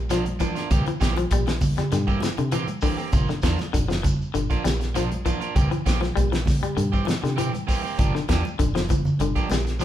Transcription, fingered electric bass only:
0, 0, Header, 1, 3, 480
1, 0, Start_track
1, 0, Tempo, 607287
1, 553, Time_signature, 4, 2, 24, 8
1, 7782, End_track
2, 0, Start_track
2, 0, Title_t, "Fingered electric bass"
2, 0, Program_c, 0, 33
2, 0, Note_on_c, 0, 34, 76
2, 404, Note_off_c, 0, 34, 0
2, 561, Note_on_c, 0, 36, 99
2, 656, Note_off_c, 0, 36, 0
2, 800, Note_on_c, 0, 34, 90
2, 987, Note_off_c, 0, 34, 0
2, 1036, Note_on_c, 0, 34, 96
2, 1414, Note_off_c, 0, 34, 0
2, 1517, Note_on_c, 0, 43, 89
2, 1803, Note_off_c, 0, 43, 0
2, 1884, Note_on_c, 0, 48, 93
2, 2071, Note_off_c, 0, 48, 0
2, 2470, Note_on_c, 0, 31, 97
2, 2570, Note_off_c, 0, 31, 0
2, 2713, Note_on_c, 0, 40, 88
2, 2811, Note_off_c, 0, 40, 0
2, 2956, Note_on_c, 0, 29, 95
2, 3334, Note_off_c, 0, 29, 0
2, 3436, Note_on_c, 0, 31, 80
2, 3533, Note_off_c, 0, 31, 0
2, 3677, Note_on_c, 0, 34, 77
2, 4244, Note_off_c, 0, 34, 0
2, 4394, Note_on_c, 0, 36, 98
2, 4492, Note_off_c, 0, 36, 0
2, 4634, Note_on_c, 0, 34, 90
2, 4823, Note_off_c, 0, 34, 0
2, 4872, Note_on_c, 0, 34, 88
2, 5252, Note_off_c, 0, 34, 0
2, 5349, Note_on_c, 0, 43, 93
2, 5639, Note_off_c, 0, 43, 0
2, 5717, Note_on_c, 0, 48, 93
2, 5907, Note_off_c, 0, 48, 0
2, 6313, Note_on_c, 0, 31, 106
2, 6412, Note_off_c, 0, 31, 0
2, 6555, Note_on_c, 0, 40, 93
2, 6654, Note_off_c, 0, 40, 0
2, 6792, Note_on_c, 0, 29, 100
2, 7173, Note_off_c, 0, 29, 0
2, 7266, Note_on_c, 0, 31, 88
2, 7369, Note_off_c, 0, 31, 0
2, 7513, Note_on_c, 0, 34, 87
2, 7782, Note_off_c, 0, 34, 0
2, 7782, End_track
3, 0, Start_track
3, 0, Title_t, "Muted fingered electric bass strokes"
3, 676, Note_on_c, 9, 29, 34
3, 755, Note_off_c, 9, 29, 0
3, 7782, End_track
0, 0, End_of_file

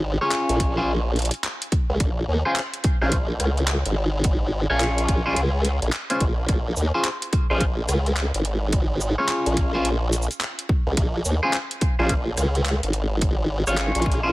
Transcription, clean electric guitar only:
0, 0, Header, 1, 2, 480
1, 0, Start_track
1, 0, Key_signature, -5, "minor"
1, 0, Tempo, 560748
1, 1714, Time_signature, 4, 2, 24, 8
1, 12260, End_track
2, 0, Start_track
2, 0, Title_t, "Clean electric guitar"
2, 0, Program_c, 0, 27
2, 181, Note_on_c, 0, 73, 81
2, 187, Note_on_c, 0, 68, 64
2, 188, Note_on_c, 0, 65, 55
2, 192, Note_on_c, 0, 61, 68
2, 628, Note_off_c, 0, 61, 0
2, 629, Note_off_c, 0, 65, 0
2, 629, Note_off_c, 0, 68, 0
2, 629, Note_off_c, 0, 73, 0
2, 660, Note_on_c, 0, 72, 93
2, 663, Note_on_c, 0, 68, 70
2, 666, Note_on_c, 0, 65, 69
2, 670, Note_on_c, 0, 61, 77
2, 780, Note_off_c, 0, 61, 0
2, 780, Note_off_c, 0, 65, 0
2, 780, Note_off_c, 0, 68, 0
2, 780, Note_off_c, 0, 72, 0
2, 2100, Note_on_c, 0, 72, 83
2, 2105, Note_on_c, 0, 68, 67
2, 2106, Note_on_c, 0, 65, 66
2, 2111, Note_on_c, 0, 61, 58
2, 2220, Note_off_c, 0, 65, 0
2, 2220, Note_off_c, 0, 72, 0
2, 2221, Note_off_c, 0, 61, 0
2, 2221, Note_off_c, 0, 68, 0
2, 2581, Note_on_c, 0, 72, 113
2, 2584, Note_on_c, 0, 68, 85
2, 2588, Note_on_c, 0, 65, 79
2, 2592, Note_on_c, 0, 61, 82
2, 2701, Note_off_c, 0, 61, 0
2, 2701, Note_off_c, 0, 65, 0
2, 2701, Note_off_c, 0, 68, 0
2, 2701, Note_off_c, 0, 72, 0
2, 4021, Note_on_c, 0, 73, 81
2, 4025, Note_on_c, 0, 68, 67
2, 4027, Note_on_c, 0, 65, 63
2, 4033, Note_on_c, 0, 61, 70
2, 4468, Note_off_c, 0, 61, 0
2, 4468, Note_off_c, 0, 65, 0
2, 4469, Note_off_c, 0, 68, 0
2, 4469, Note_off_c, 0, 73, 0
2, 4499, Note_on_c, 0, 72, 97
2, 4504, Note_on_c, 0, 68, 79
2, 4508, Note_on_c, 0, 65, 72
2, 4511, Note_on_c, 0, 61, 81
2, 4620, Note_off_c, 0, 61, 0
2, 4620, Note_off_c, 0, 65, 0
2, 4620, Note_off_c, 0, 68, 0
2, 4621, Note_off_c, 0, 72, 0
2, 5220, Note_on_c, 0, 72, 82
2, 5224, Note_on_c, 0, 68, 67
2, 5227, Note_on_c, 0, 65, 72
2, 5231, Note_on_c, 0, 61, 79
2, 5340, Note_off_c, 0, 68, 0
2, 5340, Note_off_c, 0, 72, 0
2, 5341, Note_off_c, 0, 61, 0
2, 5341, Note_off_c, 0, 65, 0
2, 5944, Note_on_c, 0, 72, 96
2, 5947, Note_on_c, 0, 68, 68
2, 5949, Note_on_c, 0, 65, 66
2, 5953, Note_on_c, 0, 61, 68
2, 6061, Note_off_c, 0, 65, 0
2, 6062, Note_off_c, 0, 61, 0
2, 6062, Note_off_c, 0, 68, 0
2, 6062, Note_off_c, 0, 72, 0
2, 6420, Note_on_c, 0, 72, 105
2, 6427, Note_on_c, 0, 68, 77
2, 6430, Note_on_c, 0, 65, 77
2, 6433, Note_on_c, 0, 61, 83
2, 6541, Note_off_c, 0, 61, 0
2, 6541, Note_off_c, 0, 72, 0
2, 6542, Note_off_c, 0, 65, 0
2, 6542, Note_off_c, 0, 68, 0
2, 7860, Note_on_c, 0, 73, 80
2, 7864, Note_on_c, 0, 68, 65
2, 7869, Note_on_c, 0, 65, 62
2, 7873, Note_on_c, 0, 61, 70
2, 8309, Note_off_c, 0, 61, 0
2, 8309, Note_off_c, 0, 65, 0
2, 8309, Note_off_c, 0, 68, 0
2, 8309, Note_off_c, 0, 73, 0
2, 8338, Note_on_c, 0, 72, 95
2, 8344, Note_on_c, 0, 68, 76
2, 8347, Note_on_c, 0, 65, 75
2, 8351, Note_on_c, 0, 61, 80
2, 8460, Note_off_c, 0, 61, 0
2, 8460, Note_off_c, 0, 65, 0
2, 8460, Note_off_c, 0, 68, 0
2, 8460, Note_off_c, 0, 72, 0
2, 9782, Note_on_c, 0, 72, 87
2, 9786, Note_on_c, 0, 68, 76
2, 9793, Note_on_c, 0, 65, 64
2, 9797, Note_on_c, 0, 61, 69
2, 9902, Note_off_c, 0, 61, 0
2, 9902, Note_off_c, 0, 65, 0
2, 9902, Note_off_c, 0, 68, 0
2, 9902, Note_off_c, 0, 72, 0
2, 10263, Note_on_c, 0, 72, 112
2, 10266, Note_on_c, 0, 68, 80
2, 10271, Note_on_c, 0, 65, 78
2, 10275, Note_on_c, 0, 61, 80
2, 10382, Note_off_c, 0, 65, 0
2, 10382, Note_off_c, 0, 68, 0
2, 10382, Note_off_c, 0, 72, 0
2, 10383, Note_off_c, 0, 61, 0
2, 11705, Note_on_c, 0, 73, 82
2, 11709, Note_on_c, 0, 68, 65
2, 11715, Note_on_c, 0, 65, 68
2, 11718, Note_on_c, 0, 61, 66
2, 12150, Note_off_c, 0, 61, 0
2, 12150, Note_off_c, 0, 68, 0
2, 12151, Note_off_c, 0, 65, 0
2, 12151, Note_off_c, 0, 73, 0
2, 12183, Note_on_c, 0, 72, 100
2, 12186, Note_on_c, 0, 68, 75
2, 12190, Note_on_c, 0, 65, 75
2, 12193, Note_on_c, 0, 61, 80
2, 12260, Note_off_c, 0, 61, 0
2, 12260, Note_off_c, 0, 65, 0
2, 12260, Note_off_c, 0, 68, 0
2, 12260, Note_off_c, 0, 72, 0
2, 12260, End_track
0, 0, End_of_file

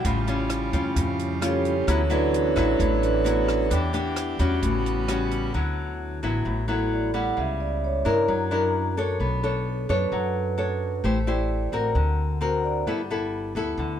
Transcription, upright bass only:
0, 0, Header, 1, 2, 480
1, 0, Start_track
1, 0, Key_signature, 2, "major"
1, 0, Tempo, 457666
1, 55, Time_signature, 4, 2, 24, 8
1, 14680, End_track
2, 0, Start_track
2, 0, Title_t, "Upright bass"
2, 0, Program_c, 0, 32
2, 50, Note_on_c, 0, 33, 91
2, 730, Note_off_c, 0, 33, 0
2, 768, Note_on_c, 0, 41, 90
2, 994, Note_off_c, 0, 41, 0
2, 1011, Note_on_c, 0, 41, 97
2, 1929, Note_off_c, 0, 41, 0
2, 1971, Note_on_c, 0, 38, 93
2, 2649, Note_off_c, 0, 38, 0
2, 2692, Note_on_c, 0, 33, 92
2, 2915, Note_off_c, 0, 33, 0
2, 2934, Note_on_c, 0, 33, 103
2, 3850, Note_off_c, 0, 33, 0
2, 3893, Note_on_c, 0, 40, 92
2, 4570, Note_off_c, 0, 40, 0
2, 4611, Note_on_c, 0, 40, 96
2, 4834, Note_off_c, 0, 40, 0
2, 4851, Note_on_c, 0, 33, 101
2, 5769, Note_off_c, 0, 33, 0
2, 5815, Note_on_c, 0, 38, 92
2, 6491, Note_off_c, 0, 38, 0
2, 6535, Note_on_c, 0, 33, 87
2, 6757, Note_off_c, 0, 33, 0
2, 6771, Note_on_c, 0, 33, 99
2, 7690, Note_off_c, 0, 33, 0
2, 7732, Note_on_c, 0, 37, 94
2, 8411, Note_off_c, 0, 37, 0
2, 8448, Note_on_c, 0, 43, 90
2, 8674, Note_off_c, 0, 43, 0
2, 8688, Note_on_c, 0, 42, 103
2, 9609, Note_off_c, 0, 42, 0
2, 9646, Note_on_c, 0, 35, 92
2, 10329, Note_off_c, 0, 35, 0
2, 10375, Note_on_c, 0, 42, 90
2, 10598, Note_off_c, 0, 42, 0
2, 10611, Note_on_c, 0, 42, 100
2, 11532, Note_off_c, 0, 42, 0
2, 11577, Note_on_c, 0, 33, 91
2, 12255, Note_off_c, 0, 33, 0
2, 12294, Note_on_c, 0, 33, 85
2, 12518, Note_off_c, 0, 33, 0
2, 12533, Note_on_c, 0, 38, 101
2, 13453, Note_off_c, 0, 38, 0
2, 13496, Note_on_c, 0, 31, 85
2, 14175, Note_off_c, 0, 31, 0
2, 14211, Note_on_c, 0, 38, 91
2, 14437, Note_off_c, 0, 38, 0
2, 14448, Note_on_c, 0, 38, 102
2, 14680, Note_off_c, 0, 38, 0
2, 14680, End_track
0, 0, End_of_file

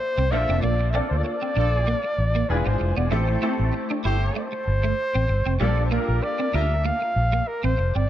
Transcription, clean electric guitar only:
0, 0, Header, 1, 3, 480
1, 0, Start_track
1, 0, Tempo, 622407
1, 482, Time_signature, 4, 2, 24, 8
1, 6242, End_track
2, 0, Start_track
2, 0, Title_t, "Clean electric guitar"
2, 0, Program_c, 0, 27
2, 136, Note_on_c, 0, 60, 78
2, 203, Note_off_c, 0, 60, 0
2, 378, Note_on_c, 0, 60, 75
2, 444, Note_off_c, 0, 60, 0
2, 483, Note_on_c, 0, 58, 77
2, 563, Note_off_c, 0, 58, 0
2, 725, Note_on_c, 0, 60, 83
2, 804, Note_off_c, 0, 60, 0
2, 1093, Note_on_c, 0, 60, 69
2, 1161, Note_off_c, 0, 60, 0
2, 1200, Note_on_c, 0, 62, 79
2, 1281, Note_off_c, 0, 62, 0
2, 1444, Note_on_c, 0, 58, 88
2, 1523, Note_off_c, 0, 58, 0
2, 1812, Note_on_c, 0, 58, 79
2, 1880, Note_off_c, 0, 58, 0
2, 2049, Note_on_c, 0, 59, 74
2, 2118, Note_off_c, 0, 59, 0
2, 2287, Note_on_c, 0, 59, 78
2, 2356, Note_off_c, 0, 59, 0
2, 2398, Note_on_c, 0, 57, 85
2, 2479, Note_off_c, 0, 57, 0
2, 2638, Note_on_c, 0, 60, 86
2, 2719, Note_off_c, 0, 60, 0
2, 3009, Note_on_c, 0, 62, 74
2, 3077, Note_off_c, 0, 62, 0
2, 3118, Note_on_c, 0, 64, 79
2, 3199, Note_off_c, 0, 64, 0
2, 3358, Note_on_c, 0, 57, 82
2, 3439, Note_off_c, 0, 57, 0
2, 3729, Note_on_c, 0, 57, 86
2, 3797, Note_off_c, 0, 57, 0
2, 3968, Note_on_c, 0, 60, 79
2, 4037, Note_off_c, 0, 60, 0
2, 4208, Note_on_c, 0, 60, 74
2, 4277, Note_off_c, 0, 60, 0
2, 4318, Note_on_c, 0, 55, 76
2, 4399, Note_off_c, 0, 55, 0
2, 4559, Note_on_c, 0, 58, 90
2, 4639, Note_off_c, 0, 58, 0
2, 4927, Note_on_c, 0, 60, 70
2, 4996, Note_off_c, 0, 60, 0
2, 5040, Note_on_c, 0, 62, 77
2, 5120, Note_off_c, 0, 62, 0
2, 5279, Note_on_c, 0, 58, 86
2, 5360, Note_off_c, 0, 58, 0
2, 5648, Note_on_c, 0, 58, 80
2, 5717, Note_off_c, 0, 58, 0
2, 5886, Note_on_c, 0, 60, 78
2, 5956, Note_off_c, 0, 60, 0
2, 6133, Note_on_c, 0, 60, 68
2, 6200, Note_off_c, 0, 60, 0
2, 6242, End_track
3, 0, Start_track
3, 0, Title_t, "Muted clean electric guitar strokes"
3, 248, Note_on_c, 9, 29, 42
3, 325, Note_off_c, 9, 29, 0
3, 615, Note_on_c, 9, 29, 39
3, 692, Note_off_c, 9, 29, 0
3, 964, Note_on_c, 9, 29, 48
3, 1041, Note_off_c, 9, 29, 0
3, 1570, Note_on_c, 9, 29, 45
3, 1647, Note_off_c, 9, 29, 0
3, 2160, Note_on_c, 9, 29, 45
3, 2237, Note_off_c, 9, 29, 0
3, 2528, Note_on_c, 9, 29, 44
3, 2605, Note_off_c, 9, 29, 0
3, 2878, Note_on_c, 9, 29, 46
3, 2955, Note_off_c, 9, 29, 0
3, 3487, Note_on_c, 9, 29, 46
3, 3564, Note_off_c, 9, 29, 0
3, 4075, Note_on_c, 9, 29, 37
3, 4152, Note_off_c, 9, 29, 0
3, 4449, Note_on_c, 9, 29, 35
3, 4526, Note_off_c, 9, 29, 0
3, 4802, Note_on_c, 9, 29, 42
3, 4879, Note_off_c, 9, 29, 0
3, 5408, Note_on_c, 9, 29, 45
3, 5485, Note_off_c, 9, 29, 0
3, 6000, Note_on_c, 9, 29, 39
3, 6077, Note_off_c, 9, 29, 0
3, 6242, End_track
0, 0, End_of_file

